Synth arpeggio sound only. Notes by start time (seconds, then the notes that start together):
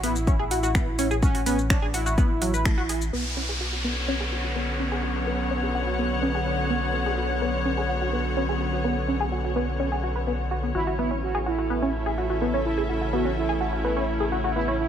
0.03 B3
0.27 C#4
0.39 G#4
0.51 F#4
0.63 F#4
0.75 B3
0.99 C#4
1.11 G#4
1.22 F#4
1.35 F#4
1.46 B3
1.70 C#4
1.82 G#4
1.94 F#4
2.06 F#4
2.18 B3
2.42 F#3
2.54 B4
2.65 A3
2.78 F#4
2.89 G#4
3.13 B3
3.37 C#4
3.49 G#4
3.61 F#4
3.73 F#4
3.84 B3
4.08 C#4
4.20 G#4
4.32 F#4
4.44 F#4
4.56 B3
4.80 C#4
4.92 G#4
5.03 F#4
5.16 F#4
5.27 B3
5.51 C#4
5.63 G#4
5.75 F#4
5.87 F#4
5.99 B3
6.23 C#4
6.35 G#4
6.46 F#4
6.59 F#4
6.70 B3
6.94 C#4
7.06 G#4
7.18 F#4
7.30 F#4
7.42 B3
7.65 C#4
7.78 G#4
7.89 F#4
8.01 F#4
8.13 B3
8.37 C#4
8.49 G#4
8.61 F#4
8.73 F#4
8.84 B3
9.08 C#4
9.20 G#4
9.32 F#4
9.44 F#4
9.56 B3
9.80 C#4
9.92 G#4
10.03 F#4
10.16 B4
10.27 B3
10.51 F#4
10.63 B3
10.75 F#4
10.87 F#4
10.99 B3
11.11 C#4
11.35 G#4
11.46 F#4
11.58 F#4
11.70 B3
11.82 C#4
12.06 G#4
12.18 F#4
12.30 F#4
12.42 B3
12.54 C#4
12.78 G#4
12.89 F#4
13.01 F#4
13.13 B3
13.25 C#4
13.49 G#4
13.61 F#4
13.73 F#4
13.84 B3
13.97 C#4
14.20 G#4
14.32 F#4
14.44 F#4
14.56 B3
14.68 C#4